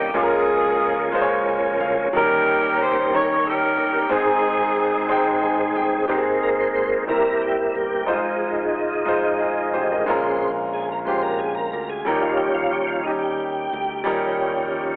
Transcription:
0.00 0.13 C2 medium
0.00 0.17 D#3 medium
0.00 0.18 G3 medium
0.00 0.11 A#3 medium
0.00 0.11 C#4 medium
0.00 0.15 C#4 medium
0.00 0.11 D#4 medium
0.00 0.18 D#4 medium
0.00 0.16 F4 medium
0.00 0.14 G4 medium
0.00 0.15 G4 medium
0.00 0.17 A4 medium
0.00 0.17 A#4 medium
0.14 1.76 C#2 medium
0.14 1.10 C#3 medium
0.14 2.08 F3 medium
0.14 0.80 G#3 medium
0.14 2.08 A#3 medium
0.14 0.81 C#4 medium
0.14 2.09 C#4 medium
0.14 1.43 F4 medium
0.14 0.81 F4 medium
0.14 1.43 G#4 medium
0.14 2.09 G#4 medium
0.14 0.22 G#4 medium
0.23 0.85 A#4 medium
1.12 1.79 G#3 medium
1.12 1.79 C#4 medium
1.12 1.80 F4 medium
1.12 1.21 C5 medium
1.22 1.84 C#5 medium
1.47 1.78 G#5 medium
1.80 2.10 D2 medium
1.80 2.11 F5 medium
2.13 3.74 D#2 medium
2.13 4.07 D#3 medium
2.13 3.09 D#3 medium
2.13 2.19 F#3 medium
2.13 4.07 A#3 medium
2.13 4.08 C#4 medium
2.13 2.80 C#4 medium
2.13 3.10 C#4 medium
2.13 2.80 D#4 medium
2.13 2.20 F#4 medium
2.13 3.09 G4 medium
2.13 2.81 A#4 medium
2.18 2.82 G3 medium
2.18 4.10 G4 medium
2.18 2.77 A#4 loud
2.83 3.12 C5 loud
3.11 3.77 G3 medium
3.11 3.78 C#4 medium
3.11 3.79 D#4 medium
3.11 3.79 A#4 medium
3.11 3.46 C#5 loud
3.48 4.08 C#4 medium
3.48 4.08 G4 medium
3.48 4.08 A#4 loud
3.77 4.08 G1 medium
4.09 5.71 G#1 loud
4.09 5.06 G#2 medium
4.09 6.05 D#3 medium
4.09 4.76 G#3 medium
4.09 6.06 G#3 medium
4.09 4.77 C4 medium
4.09 6.06 C4 medium
4.09 4.77 D#4 medium
4.09 6.05 G#4 medium
4.09 4.77 G#4 medium
4.14 5.41 C4 medium
4.14 5.41 D#4 medium
4.14 5.45 G#4 medium
5.09 5.75 G#3 medium
5.09 5.76 C4 medium
5.09 5.76 D#4 medium
5.09 5.75 G5 medium
5.43 5.74 G#5 medium
5.75 6.06 G1 medium
5.75 6.07 G5 medium
6.08 7.04 G#1 medium
6.08 7.05 G#2 medium
6.08 7.04 G#3 soft
6.08 7.05 A#3 soft
6.08 6.75 C4 medium
6.08 7.05 C4 medium
6.08 6.76 D#4 medium
6.08 6.10 G4 medium
6.08 6.17 G4 medium
6.18 6.80 G#4 medium
6.43 6.50 A#4 medium
6.60 6.68 C5 medium
6.75 6.90 C5 medium
7.07 7.71 C2 medium
7.07 8.04 C3 medium
7.07 7.74 G3 medium
7.07 8.04 G3 soft
7.07 8.05 A#3 soft
7.07 7.74 C4 medium
7.07 7.57 E4 medium
7.07 7.75 E4 medium
7.07 7.43 A#4 medium
7.07 7.76 A#4 medium
7.42 7.57 G4 medium
7.59 7.76 E4 medium
7.75 8.05 G1 medium
7.75 8.10 G4 medium
8.05 9.70 G#1 medium
8.05 9.03 G#2 medium
8.05 8.13 G3 medium
8.05 8.73 D#4 medium
8.05 8.74 F4 medium
8.05 8.74 C5 medium
8.10 10.04 F3 soft
8.10 10.05 G#3 soft
8.10 8.76 G#3 medium
8.10 10.04 D#4 medium
9.05 9.73 G#3 medium
9.05 9.40 D#4 medium
9.05 9.41 F4 medium
9.05 9.41 C5 medium
9.40 9.73 D#4 soft
9.40 9.72 G#4 medium
9.74 10.05 A1 medium
9.74 9.90 G4 medium
9.74 9.90 C5 medium
9.92 10.08 A#4 soft
9.92 10.23 D#5 medium
10.05 11.70 A#1 medium
10.05 11.04 A#2 medium
10.05 10.51 C#3 soft
10.05 10.51 G#3 soft
10.05 10.73 G#3 medium
10.05 10.74 C#4 medium
10.05 10.74 F4 medium
10.05 10.52 C5 medium
10.10 10.75 A#4 medium
10.74 10.89 G#4 medium
10.92 10.99 A#4 medium
11.05 11.73 G#3 medium
11.05 11.73 C#4 medium
11.05 11.74 F4 medium
11.05 11.74 G4 medium
11.05 11.23 C5 medium
11.23 11.40 A#4 medium
11.39 11.55 G#4 medium
11.55 11.71 A#4 medium
11.72 12.04 D2 medium
11.72 11.90 A#4 medium
11.90 12.07 G#4 medium
12.05 13.69 D#2 medium
12.05 13.03 D#3 medium
12.05 13.04 F3 soft
12.05 12.73 G3 medium
12.05 12.73 C#4 medium
12.05 12.74 D#4 medium
12.05 12.24 G4 medium
12.05 12.74 A#4 medium
12.09 13.04 G3 soft
12.09 13.04 C#4 medium
12.22 12.40 F4 medium
12.37 12.56 G4 medium
12.54 12.73 F4 medium
12.71 12.90 G4 medium
12.87 13.06 F4 medium
13.03 13.72 G3 medium
13.03 13.73 C#4 medium
13.03 13.12 D#4 medium
13.07 13.74 D#4 medium
13.07 13.74 G4 medium
13.19 14.84 G4 medium
13.73 14.04 D2 medium
14.04 14.96 D#2 medium
14.04 14.96 D#3 medium
14.04 14.96 F3 soft
14.04 14.72 G3 medium
14.04 14.96 G3 soft
14.04 14.73 C#4 medium
14.04 14.96 C#4 medium
14.04 14.73 D#4 medium
14.04 14.74 A#4 medium

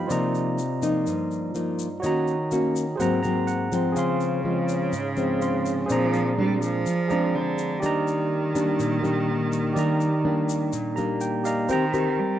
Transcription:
0.00 0.12 G4 medium
0.00 0.11 D#5 soft
0.00 0.12 F5 soft
0.00 0.12 G5 medium
0.00 0.12 B5 medium
0.06 1.04 C3 medium
0.06 0.58 F3 medium
0.06 1.97 F4 medium
0.06 1.98 C5 medium
0.06 1.99 D5 soft
0.06 shaker medium
0.11 0.58 A#3 medium
0.11 0.58 D#4 medium
0.11 2.00 D#5 medium
0.11 2.00 A#5 medium
0.35 shaker soft
0.58 shaker medium
0.82 1.51 F3 medium
0.82 1.51 A#3 medium
0.82 1.51 D#4 medium
0.82 shaker medium
1.07 2.01 G2 medium
1.07 shaker medium
1.31 shaker soft
1.55 1.87 F3 medium
1.55 1.88 A#3 soft
1.55 1.88 D#4 medium
1.55 shaker soft
1.79 shaker medium
2.00 2.97 D#3 medium
2.00 2.34 A#3 soft
2.00 2.34 C#4 medium
2.00 2.96 F#4 medium
2.00 2.97 C#5 medium
2.00 shaker medium
2.04 2.35 F#4 medium
2.04 2.98 D#5 medium
2.04 2.99 A#5 medium
2.28 shaker soft
2.51 2.84 A#3 medium
2.51 2.84 C#4 medium
2.51 2.84 F#4 medium
2.51 shaker medium
2.76 shaker medium
2.96 3.94 G#2 medium
2.96 3.20 F#3 medium
2.96 3.91 G#4 medium
2.96 3.93 C5 medium
3.00 3.20 A#3 medium
3.00 3.20 C4 medium
3.00 3.46 F#5 soft
3.00 3.21 A#5 medium
3.00 shaker medium
3.23 3.69 F#3 medium
3.23 3.69 A#3 medium
3.23 3.69 C4 medium
3.23 3.46 A#5 soft
3.23 shaker soft
3.47 3.92 F#5 medium
3.47 shaker medium
3.72 4.44 F3 medium
3.72 4.44 G#3 medium
3.72 4.44 C4 medium
3.72 shaker medium
3.92 5.85 C#3 medium
3.92 4.90 C#3 medium
3.92 5.37 C#4 medium
3.92 5.36 G#4 medium
3.92 shaker medium
3.97 5.39 F5 soft
3.97 5.40 C6 medium
4.20 shaker soft
4.45 4.93 F3 medium
4.45 4.93 G#3 medium
4.45 4.93 C4 medium
4.69 shaker medium
4.92 5.87 G#2 medium
4.92 shaker medium
5.16 5.86 F3 medium
5.16 5.86 G#3 medium
5.16 5.86 C4 medium
5.16 shaker soft
5.39 5.89 C#4 soft
5.39 5.85 G#4 soft
5.39 5.90 F5 soft
5.39 5.90 C6 soft
5.39 shaker medium
5.66 shaker medium
5.86 6.84 A#2 medium
5.86 6.34 F3 loud
5.86 7.06 G#4 medium
5.86 7.07 C5 medium
5.86 7.08 D5 soft
5.86 shaker medium
5.90 6.34 G#3 medium
5.90 6.35 C4 medium
5.90 6.35 D4 medium
5.90 7.09 A#5 medium
6.13 shaker soft
6.38 6.61 G3 loud
6.38 6.86 G#3 medium
6.38 6.86 C4 medium
6.38 6.86 D4 medium
6.62 7.36 F3 loud
6.62 shaker medium
6.86 7.80 F3 medium
6.86 shaker medium
7.08 7.79 G#3 medium
7.08 7.79 C4 medium
7.08 7.79 D4 medium
7.08 7.82 G#4 soft
7.08 7.82 C5 soft
7.08 7.81 D5 soft
7.08 7.83 A#5 soft
7.08 shaker soft
7.34 7.84 D3 medium
7.58 shaker medium
7.80 8.77 D#3 medium
7.80 11.45 D#3 medium
7.80 8.51 G3 soft
7.80 8.51 A#3 soft
7.80 8.51 D4 medium
7.80 9.71 G4 medium
7.80 9.72 D5 medium
7.80 shaker medium
7.84 9.73 D#4 medium
7.84 9.74 A#5 medium
8.07 shaker soft
8.55 9.00 G3 medium
8.55 9.00 A#3 medium
8.55 9.00 D4 medium
8.55 shaker medium
8.79 9.74 A#2 medium
8.79 shaker medium
9.03 9.72 G3 medium
9.03 9.72 A#3 medium
9.03 9.72 D4 medium
9.03 shaker soft
9.52 shaker medium
9.73 10.70 D#3 medium
9.73 10.07 G3 soft
9.73 10.07 A#3 medium
9.73 10.08 D4 medium
9.73 11.42 D#4 medium
9.73 11.40 G4 medium
9.73 11.41 D5 medium
9.73 shaker medium
9.79 10.95 A#5 medium
10.01 shaker soft
10.24 10.93 G3 medium
10.24 10.93 A#3 medium
10.24 10.93 D4 medium
10.49 shaker medium
10.73 11.67 A#2 medium
10.73 shaker medium
10.96 11.66 G3 medium
10.96 11.66 A#3 medium
10.96 11.66 D4 medium
10.96 11.19 A#5 soft
10.96 shaker soft
11.21 11.43 G5 medium
11.21 shaker medium
11.44 11.69 G4 soft
11.44 11.69 D5 soft
11.44 11.69 D#5 soft
11.44 11.68 F5 medium
11.44 11.70 A#5 soft
11.44 shaker medium
11.69 12.21 D#3 medium
11.69 11.84 C4 medium
11.69 11.84 G4 medium
11.69 11.84 A#4 medium
11.69 12.39 C5 medium
11.69 12.39 G5 medium
11.69 12.39 A#5 medium
11.69 shaker medium
11.93 12.39 C4 medium
11.93 12.39 G4 medium
11.93 12.39 A#4 medium
11.93 shaker soft
12.19 12.39 G3 medium

